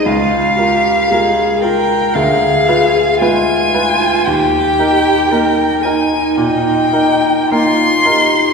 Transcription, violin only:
\new Staff \with { instrumentName = "Violin" } { \time 4/4 \key ees \mixolydian \tempo 4 = 57 f''4. g''8 f''4 aes''4 | g''4. aes''8 g''4 c'''4 | }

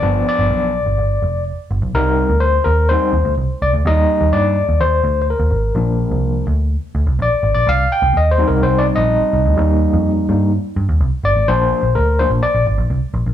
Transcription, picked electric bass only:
\new Staff \with { instrumentName = "Picked electric bass" } { \clef bass \time 4/4 \key bes \major \tempo 4 = 126 g,,8 r16 g,,16 b,,8. g,,16 g,,8 f,,8. r16 g,,16 b,,16 | c,8. d,8. ees,8. r16 ees,16 d,16 c,16 r16 c,16 d,16 | ees,8 r16 ees,16 g,8. ees,16 ees,8 d,8. ees,16 aes,,8 | bes,,8. c,8. d,8. r16 d,16 c,16 bes,,16 r16 aes,,16 bes,,16 |
c,8 r16 c,16 ees,8. c,16 c,8. bes,,8 r16 c,16 d,16 | ees,8. f,8. g,8. r16 g,16 ees,16 c,16 r16 g,,16 aes,,16 | bes,,8 r16 bes,,16 d,8. bes,,16 r16 bes,,16 aes,,16 bes,,16 c,16 r16 bes,,16 bes,,16 | }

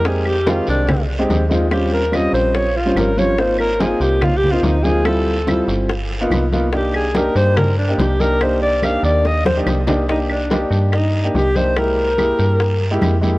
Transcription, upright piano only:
\new Staff \with { instrumentName = "Upright piano" } { \time 4/4 \key c \minor \tempo 4 = 143 <aes c' ees' g'>8. r16 <ees aes c' g'>4~ <ees aes c' g'>16 r8 <aes c' ees' g'>8 r16 <aes c' ees' f'>16 r16 | <g c' des' f'>8. r16 <g c' des' f'>4~ <g c' des' f'>16 r8 <g c' des' f'>8 r16 <g c' des' f'>16 r16 | <bes c' ees' f'>8. r16 <bes c' ees' f'>4~ <bes c' ees' f'>16 r8 <bes c' ees' f'>8 r16 <bes c' ees' f'>16 r16 | <g c' e' f'>8. r16 <g c' e' f'>4 r8. <ais b dis' f'>8 r16 <ais b dis' f'>16 r16 |
<bes d' ees' g'>8. r16 <bes d' ees' g'>4~ <bes d' ees' g'>16 r8 <bes d' ees' g'>8 r16 <bes d' ees' g'>16 r16 | <bes d' ees' g'>8. r16 <bes d' ees' g'>4~ <bes d' ees' g'>16 r8 <bes d' ees' g'>8 r16 <bes d' ees' g'>16 r16 | <bes d' ees' g'>8. r16 <bes d' ees' g'>4~ <bes d' ees' g'>16 r8 <bes d' ees' g'>8 r16 <bes d' ees' g'>16 r16 | <aes bes e' g'>8. r16 <bes e' g' aes'>4~ <bes e' g' aes'>16 r8 <aes bes e' g'>8 r16 <aes bes e' g'>16 r16 | }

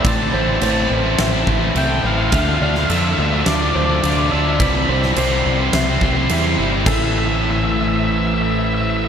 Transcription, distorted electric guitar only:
\new Staff \with { instrumentName = "Distorted electric guitar" } { \time 4/4 \key a \minor \tempo 4 = 106 <a, e a c' e'>16 <a c' e'>16 <e a c' e'>16 <a c' e'>16 <a, e a c' e'>8. <a c' e'>8 <a c' e'>16 <e a c' e'>16 <a c' e'>16 <a, e a c' e'>8 <e a c' e'>16 <a c' e'>16 | <d a d' f'>16 <a d' f'>16 <d a d' f'>16 <a d' f'>16 <d a d' f'>8. <a d' f'>8 <a d' f'>16 <d a d' f'>16 <a d' f'>16 <d a d' f'>8 <d a d' f'>16 <a d' f'>16 | <c e g c' e'>16 <g c' e'>16 <e g c' e'>16 <g c' e'>16 <c e g c' e'>8. <g c' e'>8 <g c' e'>16 <e g c' e'>16 <g c' e'>16 <c e g c' e'>8 <e g c' e'>16 <g c' e'>16 | <a, e a>1 | }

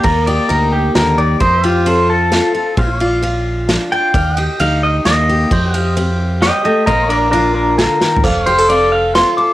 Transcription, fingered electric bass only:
\new Staff \with { instrumentName = "Fingered electric bass" } { \clef bass \time 3/4 \key bes \major \tempo 4 = 132 ees,4 d,4 ees,4 | f,2. | bes,,2. | ees,4 d,4 ees,4 |
f,2. | bes,,2. | f,,2. | }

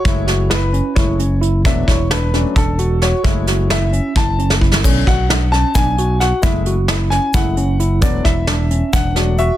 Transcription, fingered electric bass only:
\new Staff \with { instrumentName = "Fingered electric bass" } { \clef bass \time 7/8 \key fis \minor \tempo 4 = 132 fis,,2 fis,,4. | e,,8 e,,4. e,,4. | fis,,2 fis,,4. | b,,8 b,,4. b,,4. |
fis,,2 fis,,4. | e,,8 e,,4. e,,4. | }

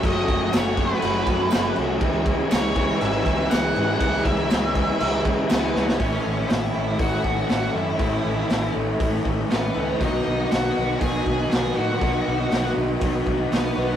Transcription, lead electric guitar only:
\new Staff \with { instrumentName = "Lead electric guitar" } { \time 4/4 \key a \lydian \tempo 4 = 120 dis''4 cis''8 b'2 r8 | r4 cis''4 e''8 e''8 fis''4 | fis''8 e''2 r8 b4 | cis'4 e'4 fis'4 fis'8 e'8~ |
e'4. r4. b4 | dis'4 fis'4 gis'4 gis'8 fis'8~ | fis'4. r4. b4 | }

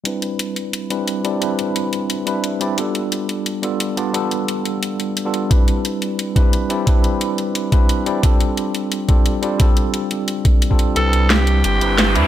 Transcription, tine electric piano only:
\new Staff \with { instrumentName = "Tine electric piano" } { \time 4/4 \key c \major \tempo 4 = 176 <g c' d' e' b'>2~ <g c' d' e' b'>8 <g c' d' e' b'>4 <g c' d' e' d''>8 | <g c' d' e' b'>2~ <g c' d' e' b'>8 <g c' d' e' b'>4 <g c' d' e' d''>8 | <g b d' f' a'>2~ <g b d' f' a'>8 <g b d' f' a'>4 <g b d' f' d''>8 | <g b d' f' a'>2~ <g b d' f' a'>8 r8. <g b d' f' a'>8. |
<g c' d' e' b'>2~ <g c' d' e' b'>8 <g c' d' e' b'>4 <g c' d' e' d''>8 | <g c' d' e' b'>2~ <g c' d' e' b'>8 <g c' d' e' b'>4 <g c' d' e' d''>8 | <g c' d' f' a'>2~ <g c' d' f' a'>8 <g c' d' f' a'>4 <g c' d' f' d''>8 | <g c' d' f' a'>2~ <g c' d' f' a'>8 r8. <g c' d' f' a'>8. |
<g c' d' b'>2~ <g c' d' b'>8 <g c' d' e' b'>4 <g c' d' e' d''>8 | }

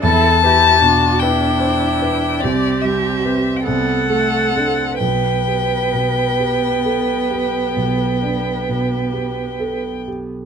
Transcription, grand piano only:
\new Staff \with { instrumentName = "Grand piano" } { \time 12/8 \key g \major \tempo 4. = 44 e,8 b'8 b,8 b'8 c''8 b'8 c,8 g8 <c' b'>8 c,8 a8 <d' a'>8 | b,,8 g'8 b,8 g'8 a'8 g'8 b,,8 d'8 b,8 g'8 a'8 g'8 | }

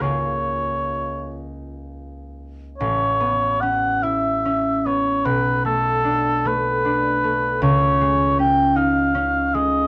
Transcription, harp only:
\new Staff \with { instrumentName = "Harp" } { \time 6/8 \key des \major \tempo 4. = 50 <des, bes des' f' aes'>2. | \key b \minor a,,8 b8 cis'8 e'8 cis'8 b8 | b,,8 a8 d'8 a8 d'8 a8 | cis,8 gis8 cis'8 dis'8 cis'8 gis8 | }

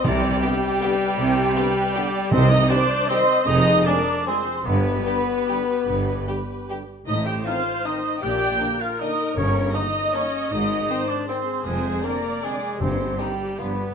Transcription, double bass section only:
\new Staff \with { instrumentName = "Double bass section" } { \clef bass \time 3/4 \key g \phrygian \tempo 4 = 155 c,4 r2 | c,4 r2 | c,4 r2 | f,,4 r2 |
g,,4 r2 | g,,4 r2 | a,,4 r2 | bes,,4 r2 |
g,,4 r2 | aes,,4 r2 | f,,4 r2 | g,,4 r4 g,,4 | }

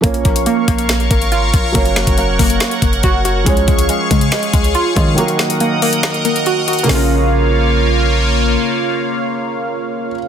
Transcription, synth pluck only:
\new Staff \with { instrumentName = "Synth pluck" } { \time 4/4 \key bes \minor \tempo 4 = 140 bes8 bes8 bes8 bes8 bes8 bes8 f'8 f'8 | bes8 bes8 bes8 bes8 bes8 bes8 ges'8 ges'8 | aes8 aes8 aes8 aes8 aes8 aes8 f'8 f'8 | bes8 bes8 bes8 bes8 bes8 bes8 ges'8 ges'8 |
<bes des' f'>1~ | <bes des' f'>1 | }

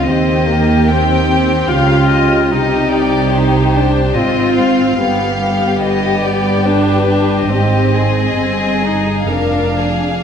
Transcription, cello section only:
\new Staff \with { instrumentName = "Cello section" } { \clef bass \time 3/4 \key c \phrygian \tempo 4 = 72 ees2 des4 | \key c \minor c2 aes,4 | g,2. | aes,4 g,4 f,4 | }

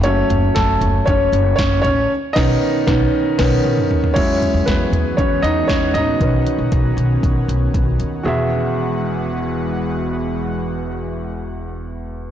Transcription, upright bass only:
\new Staff \with { instrumentName = "Upright bass" } { \clef bass \time 4/4 \key e \major \tempo 4 = 117 fis,,8 fis,,8 fis,,8 fis,,8 fis,,8 fis,,8 fis,,8 a,,8 | r8 b,,8 r8 b,,8 r8 b,,8 r4 | e,8 r16 e,16 e,8 e,8 e,8 e,8 e,8 a,,8 | b,,8 r16 b,,16 b,,8 b,,8 b,,8 b,,8 b,,8 dis,8 |
e,,1~ | e,,1 | }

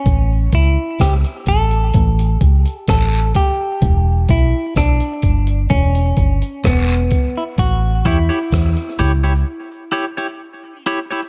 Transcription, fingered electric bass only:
\new Staff \with { instrumentName = "Fingered electric bass" } { \clef bass \time 4/4 \key a \mixolydian \tempo 4 = 64 a,,8 cis,16 r16 cis,16 r16 a,,8 a,,8 cis,16 r16 a,,8 r8 | e,,8 b,,16 r16 b,,16 r16 g,,8 e,,8 g,,16 r16 e,,8 r8 | a,,8 e,16 r16 e,16 r16 cis,8 r2 | }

